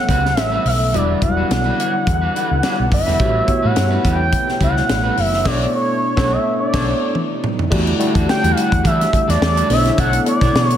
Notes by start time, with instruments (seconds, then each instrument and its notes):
Already playing: analog synth pad C#3 E3 A3 B3 A4, tine electric piano F#3 G3 C#4 F#4 B4 C#5, analog synth lead F#5
0.08 fretless electric bass C#2, clean electric guitar G3 C#4 F#4 B4, kick, closed hi-hat
0.24 muted clean electric guitar stroke, snare
0.37 fretless electric bass A1, analog synth lead E5, muted clean electric guitar stroke, snare, closed hi-hat
0.52 clean electric guitar G3 C#4 F#4 B4
0.65 fretless electric bass B1, analog synth lead E5, muted clean electric guitar stroke, open hi-hat
0.80 muted clean electric guitar stroke
0.93 fretless electric bass E1, analog synth pad D3 B3 E4, clean electric guitar G3 D4 F#4 B4, tine electric piano G3 E4 F#4 D5, analog synth lead D5, closed hi-hat
1.22 fretless electric bass E1, tine electric piano F#3 E4 F#4 D5, analog synth lead F#5, muted clean electric guitar stroke, kick, closed hi-hat
1.28 tine electric piano G3
1.37 clean electric guitar G3 D4 F#4 B4
1.50 fretless electric bass B1, muted clean electric guitar stroke, snare, closed hi-hat
1.65 clean electric guitar G3 D4 F#4 B4
1.79 clean electric guitar G3 D4 F#4 C#5, closed hi-hat
1.94 muted clean electric guitar stroke
2.06 fretless electric bass E2, muted clean electric guitar stroke, kick, closed hi-hat
2.22 clean electric guitar G3 D4 F#4 B4
2.35 clean electric guitar G3 D4 F#4 B4, closed hi-hat
2.50 fretless electric bass C#2, muted clean electric guitar stroke
2.63 clean electric guitar G3 D4 F#4 B4, snare, closed hi-hat
2.79 fretless electric bass B1, muted clean electric guitar stroke
2.91 fretless electric bass F#1, analog synth lead E5, muted clean electric guitar stroke, kick, open hi-hat
3.06 fretless electric bass E1, clean electric guitar G3 D4 F#4 B4, snare
3.19 fretless electric bass A1, analog synth pad B2 A3 E4, clean electric guitar G3 C#4 F#4 B4, tine electric piano B3 F#4 G4 C#5, kick, closed hi-hat
3.48 tine electric piano B3 F#4 G4 C#5, muted clean electric guitar stroke, kick, closed hi-hat
3.63 fretless electric bass A2, clean electric guitar G3 C#4 F#4 B4, analog synth lead F#5
3.76 fretless electric bass G2, muted clean electric guitar stroke, snare, closed hi-hat
3.91 clean electric guitar G3 C#4 F#4 B4
4.04 fretless electric bass E2, clean electric guitar G3 C#4 F#4 B4, analog synth lead G5, kick, closed hi-hat
4.20 muted clean electric guitar stroke
4.32 muted clean electric guitar stroke, kick, closed hi-hat
4.47 muted clean electric guitar stroke, snare
4.60 fretless electric bass C#2, clean electric guitar G3 C#4 F#4 B4, analog synth lead F#5, kick, closed hi-hat
4.75 muted clean electric guitar stroke, snare
4.88 fretless electric bass A1, muted clean electric guitar stroke, snare, closed hi-hat
5.03 clean electric guitar G3 C#4 F#4 B4
5.16 fretless electric bass F#1, analog synth lead E5, muted clean electric guitar stroke, open hi-hat
5.32 muted clean electric guitar stroke, snare
5.45 fretless electric bass B1, clean electric guitar A3 D4 F#4 C#5, tine electric piano B3 D4 A4 C#5, analog synth pad D4, analog synth lead D5, kick, snare, crash
5.75 analog synth lead C#5
6.17 fretless electric bass B1, clean electric guitar A3 D4 F#4 C#5, tine electric piano B3 D4 A4 C#5, kick, snare
6.32 analog synth lead E5
6.60 analog synth lead D5
6.73 fretless electric bass B1, clean electric guitar A3 D4 F#4 C#5, tine electric piano B3 D4 A4 C#5, kick, snare, crash
7.14 analog synth pad C3 D#4, high tom
7.44 mid tom
7.59 floor tom
7.70 fretless electric bass E2, analog synth pad D3 E3 G3 A3 F#5, clean electric guitar G3 D4 F#4 A4, tine electric piano A3 E4 F#4 G4 D5, kick, crash
7.87 closed hi-hat
7.99 clean electric guitar G3 D4 F#4 A4, tine electric piano A3 E4 F#4 G4 D5, closed hi-hat
8.14 fretless electric bass E2, clean electric guitar G3 D4 F#4 A4, kick, closed hi-hat
8.27 analog synth lead G5, muted clean electric guitar stroke, snare
8.43 fretless electric bass E2, clean electric guitar G3 D4 F#4 A4, closed hi-hat
8.52 clean electric guitar G3, analog synth lead F5
8.56 clean electric guitar D4 F#4 A4, analog synth lead F#5, closed hi-hat
8.71 fretless electric bass E2, muted clean electric guitar stroke, kick, closed hi-hat
8.83 fretless electric bass E3, clean electric guitar G3 D4 F#4 A4, analog synth lead E5, kick, closed hi-hat
9.00 muted clean electric guitar stroke, snare, closed hi-hat
9.13 muted clean electric guitar stroke, kick, closed hi-hat
9.28 fretless electric bass E2, clean electric guitar G3 D4 F#4 A4, analog synth lead D5, snare, closed hi-hat
9.41 fretless electric bass E2, muted clean electric guitar stroke, snare
9.56 clean electric guitar G3 D4 F#4 A4, closed hi-hat
9.69 fretless electric bass B1, analog synth pad D3 B3 D4, tine electric piano B3 D4 E4 A4 C5, clean electric guitar D4 E4 A4 C#5, analog synth lead E5, open hi-hat
9.76 tine electric piano C#5
9.85 muted clean electric guitar stroke, snare, closed hi-hat
9.97 fretless electric bass B1, clean electric guitar D4 E4 A4 C#5, analog synth lead F#5, kick, closed hi-hat
10.13 muted clean electric guitar stroke, closed hi-hat
10.25 tine electric piano B3 D4 E4 A4 D5, analog synth lead D5, muted clean electric guitar stroke, closed hi-hat
10.41 fretless electric bass B2, clean electric guitar D4 E4 A4 C#5, kick, snare, closed hi-hat
10.55 fretless electric bass B2, muted clean electric guitar stroke, snare
10.65 analog synth lead C#5
10.70 muted clean electric guitar stroke, closed hi-hat